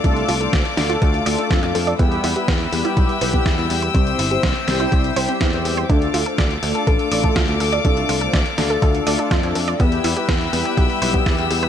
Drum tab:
HH |xxoxxxoxxxoxxxox|xxoxxxoxxxoxxxox|xxoxxxoxxxoxxxox|xxoxxxoxxxoxxxox|
SD |----o-o-----o---|----o-------o---|----o-o-----o---|----o-------o---|
BD |o---o---o---o---|o---o---o--oo---|o---o---o---o---|o---o---o--oo---|

HH |xxoxxxoxxxoxxxox|xxoxxxoxxxoxxxox|
SD |----o-o-----o---|----o-------o---|
BD |o---o---o---o---|o---o---o--oo---|